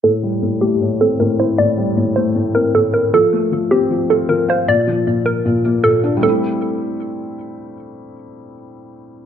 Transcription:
X:1
M:4/4
L:1/8
Q:1/4=155
K:Aphr
V:1 name="Synth pluck"
A2 z G2 A B c | d2 z c2 B A B | A2 z G2 A B c | d2 z B3 A z |
A6 z2 | z8 |]
V:2 name="Felt piano" clef=bass
A,, G, A,, A, A,, C A,, E | A,, G, A,, A, A,, C A,, E | F, A, F, C F, F F, f | B,, F, B,,2 B,, B, B,, D |
[G,A,CE]8- | [G,A,CE]8 |]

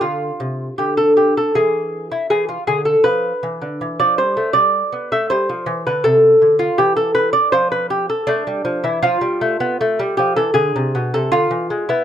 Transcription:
X:1
M:4/4
L:1/16
Q:1/4=80
K:Gmix
V:1 name="Lute"
F4 G A G A ^G3 E G F G A | B4- B d c2 d3 e c3 B | A3 F G A B d c B G A D3 E | F6 G A ^G3 A F3 E |]
V:2 name="Lute" clef=bass
D,2 C,2 D,4 E,4 E,2 D,2 | F,2 E, D, E, F, G, A, G,2 B, A, G, F, E, D, | C,2 D,2 E,4 F,4 A, G, F, E, | F, G, A, B, A, G, F, E, D, C, B,, C, D, E, ^G, B, |]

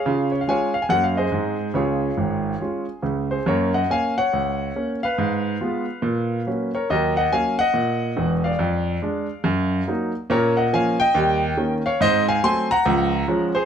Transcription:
X:1
M:4/4
L:1/16
Q:"Swing" 1/4=140
K:Db
V:1 name="Grand piano"
[Adf]2 d f [dfa]2 f a g f [Ace]6 | [FAd]12 z2 [Ac]2 | [K:F#] [Ac]2 [df]2 [eg]2 [cf]8 [Be]2- | [Be]12- [Be]2 [Ac]2 |
[Ad]2 [df]2 [eg]2 [df]8 [=de]2- | [=de]12- [de]2 z2 | [K:Db] [Bd]2 [eg]2 [fa]2 [e=g]8 [df]2 | [ce]2 [fa]2 [ac']2 [gb]8 [Ac]2 |]
V:2 name="Grand piano" clef=bass
[D,F]4 [A,DF]4 [G,,B,DG]4 [A,,A,CE]4 | [D,,D,]4 [A,,,A,,]4 [A,DF]4 [D,,D,]4 | [K:F#] [F,,A,]4 [A,C]4 C,,4 [A,C]4 | _A,,4 [_A,_C=F]4 ^A,,4 [^F,^A,^C]4 |
[D,,F,]4 [F,A,C]4 A,,4 [=E,,,=E,,]4 | =F,,4 [_A,=D]4 ^F,,4 [F,^A,^D]4 | [K:Db] [B,,D]4 [F,B,D]4 [E,,=G,]4 [E,B,D]4 | [A,,C]4 [G,=A,C]4 [D,,F,]4 [F,_A,D]4 |]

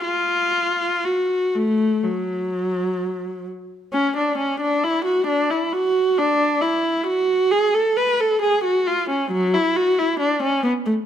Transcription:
X:1
M:4/4
L:1/16
Q:1/4=67
K:F#m
V:1 name="Viola"
^E4 F2 A,2 F,6 z2 | C D C D E F D E F2 D2 E2 F2 | G A B A G F ^E C F, =E F E D C B, A, |]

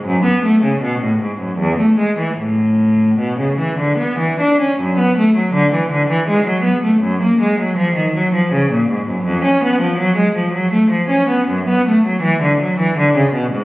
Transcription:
X:1
M:3/4
L:1/16
Q:1/4=80
K:A
V:1 name="Cello" clef=bass
F,, B, A, C, B,, A,, G,, F,, E,, A, G, E, | A,,4 B,, C, E, D, B, E, D C | [K:F#m] F,, B, A, F, D, E, D, E, G, F, B, A, | F,, ^A, G, F, ^E, ^D, F, E, C, ^A,, G,, F,, |
^E,, C B, ^E, F, G, E, F, A, E, C B, | F,, B, A, F, E, D, F, E, D, C, B,, G,, |]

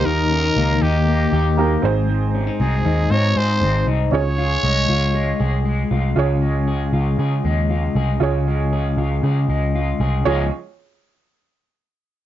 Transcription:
X:1
M:4/4
L:1/16
Q:1/4=118
K:Db
V:1 name="Trumpet"
B6 =G8 z2 | z4 A4 d2 c4 z2 | d12 z4 | z16 |
z16 | z16 |]
V:2 name="Upright piano"
[B,E=GB]12 [B,EGB]2 [CEAc]2- | [CEAc]12- [CEAc]2 z2 | [DFAd]16 | [FAd]16 |
[FAd]16 | [FAd]2 z12 z2 |]
V:3 name="Clean electric guitar"
[E,B,E=G]2 D E B,2 E2 B,2 G2 B,2 A,,2 | A,,2 D E C2 E2 C2 A2 C2 E2 | z2 F2 A,2 F2 A,2 A2 A,2 F2 | D,2 A,2 A2 F2 A2 A,2 F2 A2 |
D,2 A,2 A2 F2 A2 A,2 F2 A2 | [D,F,A,FA]2 z12 z2 |]
V:4 name="Picked electric bass" clef=bass
E,,4 D,,2 E,,4 E,,4 A,,,2- | A,,,4 C,,2 E,,2 A,,2 A,,2 A,,,2 C,,2 | D,,4 C,,2 D,,4 C,,4 C,,2 | D,,6 D,,2 D,2 E,,4 C,,2 |
D,,6 D,,2 D,2 D,,4 C,,2 | D,,2 z12 z2 |]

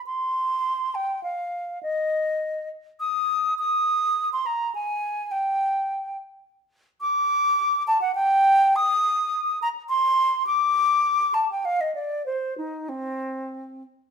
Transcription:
X:1
M:3/4
L:1/16
Q:1/4=103
K:Cm
V:1 name="Flute"
c'6 g2 f4 | e6 z2 e'4 | e'4- e' c' b2 a4 | g6 z6 |
d'6 =a ^f g4 | e'6 b2 c'4 | d'6 =a g f e d2 | c2 E2 C6 z2 |]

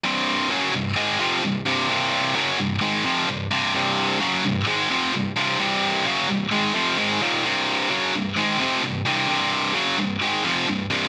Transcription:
X:1
M:4/4
L:1/8
Q:1/4=130
K:Cm
V:1 name="Distorted electric guitar" clef=bass
[C,,G,,C,]2 [^F,,_D,^F,] [C,,G,,] [A,,E,A,] [=F,,C,=F,] [C,,G,,] [C,,G,,C,] | [C,,G,,C,]2 [^F,,_D,^F,] [C,,G,,] [A,,E,A,] [=F,,C,=F,] [C,,G,,] [C,,G,,C,] | [C,,G,,C,]2 [^F,,_D,^F,] [C,,G,,] [A,,E,A,] [=F,,C,=F,] [C,,G,,] [C,,G,,C,] | [C,,G,,C,]2 [^F,,_D,^F,] [C,,G,,] [A,,E,A,] [=F,,C,=F,] [A,,E,A,] [E,,B,,E,] |
[C,,G,,C,]2 [^F,,_D,^F,] [C,,G,,] [A,,E,A,] [=F,,C,=F,] [C,,G,,] [C,,G,,C,] | [C,,G,,C,]2 [^F,,_D,^F,] [C,,G,,] [A,,E,A,] [=F,,C,=F,] [C,,G,,] [C,,G,,C,] |]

